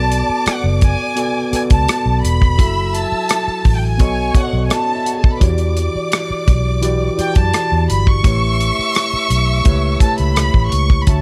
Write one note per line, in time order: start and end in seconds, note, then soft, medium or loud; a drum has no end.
0.00 0.21 B1 medium
0.00 1.07 B3 medium
0.00 1.07 F#4 medium
0.00 1.08 A4 medium
0.00 1.08 B4 medium
0.00 1.09 D5 medium
0.00 2.19 D5 medium
0.00 0.47 A5 medium
0.00 2.19 D6 medium
0.12 closed hi-hat medium
0.29 muted fingered electric bass stroke soft
0.46 0.63 F#5 medium
0.46 muted fingered electric bass stroke soft
0.46 cross-stick medium
0.46 closed hi-hat medium
0.64 0.94 F#1 medium
0.81 1.49 G#5 medium
0.81 kick medium
0.81 closed hi-hat medium
1.16 1.49 B3 medium
1.16 1.50 F#4 medium
1.16 1.50 A4 medium
1.16 1.51 B4 medium
1.16 1.51 D5 medium
1.16 closed hi-hat medium
1.51 2.51 B3 medium
1.51 2.51 F#4 medium
1.51 2.52 A4 soft
1.51 2.52 B4 soft
1.51 2.53 D5 medium
1.51 1.62 G#5 medium
1.51 muted fingered electric bass stroke soft
1.51 closed hi-hat medium
1.70 1.86 C#2 medium
1.70 2.21 A5 medium
1.70 kick medium
1.70 closed hi-hat soft
1.88 cross-stick loud
1.88 closed hi-hat medium
2.06 2.21 B1 medium
2.24 2.59 E1 medium
2.24 2.95 B5 medium
2.24 closed hi-hat medium
2.42 kick medium
2.42 cross-stick soft
2.57 3.04 F#1 medium
2.57 3.90 F#3 medium
2.57 3.91 E4 medium
2.57 3.90 F#4 medium
2.57 3.91 A4 medium
2.57 3.62 E5 medium
2.57 3.91 E5 medium
2.57 3.62 E6 medium
2.57 kick loud
2.57 closed hi-hat medium
2.95 3.77 A5 medium
2.95 closed hi-hat medium
3.12 muted fingered electric bass stroke soft
3.29 cross-stick loud
3.29 closed hi-hat medium
3.48 muted fingered electric bass stroke soft
3.65 4.00 A1 medium
3.65 kick medium
3.65 open hi-hat soft
3.77 3.83 G5 medium
3.85 4.37 G#5 medium
3.98 4.30 B1 medium
3.98 4.32 B3 medium
3.98 4.32 F#4 medium
3.98 4.33 A4 medium
3.98 4.71 C#5 medium
3.98 4.33 C#5 medium
3.98 4.34 D#5 medium
3.98 4.71 C#6 medium
3.98 kick medium
3.98 closed hi-hat medium
4.33 5.33 B3 medium
4.33 5.34 F#4 medium
4.33 5.34 A4 medium
4.33 5.35 C#5 soft
4.33 4.43 D5 medium
4.33 muted fingered electric bass stroke soft
4.33 kick medium
4.33 closed hi-hat medium
4.38 4.65 F#5 medium
4.44 5.38 D#5 medium
4.53 4.68 B1 medium
4.66 4.72 G#5 soft
4.70 5.25 A5 medium
4.70 cross-stick medium
4.70 closed hi-hat medium
4.79 4.88 C#4 medium
4.79 4.88 C#5 medium
4.88 4.97 D#4 medium
4.88 4.97 D#5 medium
4.96 5.05 E4 medium
4.96 5.05 E5 medium
5.05 5.14 F#4 medium
5.05 5.14 F#5 medium
5.05 closed hi-hat medium
5.14 5.23 G#4 medium
5.14 5.23 G#5 medium
5.23 5.32 A4 medium
5.23 5.32 A5 medium
5.23 kick medium
5.33 5.42 B4 medium
5.33 5.41 B5 medium
5.40 5.87 E2 medium
5.40 6.72 E3 medium
5.40 6.73 E4 medium
5.40 6.73 F#4 medium
5.40 6.74 G4 medium
5.40 5.49 C#5 medium
5.40 7.85 D5 medium
5.40 7.85 D6 medium
5.40 kick medium
5.40 closed hi-hat medium
5.50 6.77 D5 medium
5.58 closed hi-hat soft
5.77 closed hi-hat medium
5.95 muted fingered electric bass stroke soft
6.12 cross-stick loud
6.12 closed hi-hat medium
6.30 muted fingered electric bass stroke soft
6.48 7.08 B1 medium
6.48 kick medium
6.48 closed hi-hat medium
6.81 7.15 E3 medium
6.81 7.15 E4 medium
6.81 7.16 F#4 medium
6.81 7.16 G4 medium
6.81 7.17 D5 medium
6.81 closed hi-hat medium
7.17 8.16 E3 medium
7.17 8.17 E4 medium
7.17 8.17 F#4 soft
7.17 8.18 G4 medium
7.17 8.18 D5 medium
7.17 7.36 G5 medium
7.17 muted fingered electric bass stroke soft
7.17 closed hi-hat medium
7.35 7.51 F#2 medium
7.35 7.90 A5 medium
7.35 kick medium
7.35 closed hi-hat soft
7.54 cross-stick medium
7.54 closed hi-hat medium
7.72 7.87 E2 medium
7.90 8.20 G1 medium
7.90 8.06 B5 medium
7.90 closed hi-hat medium
8.07 10.02 C#6 loud
8.07 kick medium
8.23 8.70 A1 medium
8.23 9.55 A3 medium
8.23 9.56 E4 medium
8.23 9.56 G4 medium
8.23 9.57 B4 medium
8.23 9.57 C#5 medium
8.23 10.68 E5 medium
8.23 10.68 E6 medium
8.23 kick loud
8.23 closed hi-hat medium
8.60 closed hi-hat medium
8.79 muted fingered electric bass stroke soft
8.95 cross-stick loud
8.95 closed hi-hat medium
9.13 muted fingered electric bass stroke soft
9.30 9.61 B1 medium
9.30 closed hi-hat medium
9.64 9.96 C#2 medium
9.64 9.98 A3 medium
9.64 9.98 E4 medium
9.64 9.99 G4 medium
9.64 9.99 B4 medium
9.64 kick medium
9.64 closed hi-hat medium
9.69 10.00 C#5 medium
10.00 10.99 A3 medium
10.00 11.00 E4 soft
10.00 11.00 G4 medium
10.00 11.01 B4 soft
10.00 11.01 C#5 medium
10.00 10.18 A5 medium
10.00 kick medium
10.00 closed hi-hat medium
10.18 10.50 C#2 medium
10.18 10.69 B5 medium
10.18 closed hi-hat soft
10.36 cross-stick medium
10.36 closed hi-hat medium
10.54 10.69 A1 medium
10.54 kick medium
10.72 11.03 C#2 medium
10.72 11.01 C#6 medium
10.72 closed hi-hat medium
10.90 kick medium
10.90 cross-stick soft
11.02 11.08 B5 medium
11.06 11.22 D2 medium
11.06 11.22 D3 medium
11.06 11.22 D4 medium
11.06 11.22 F#4 medium
11.06 11.22 C#5 medium
11.06 11.22 E5 medium
11.06 11.22 A5 medium
11.06 11.22 C#6 medium
11.06 kick loud
11.06 closed hi-hat medium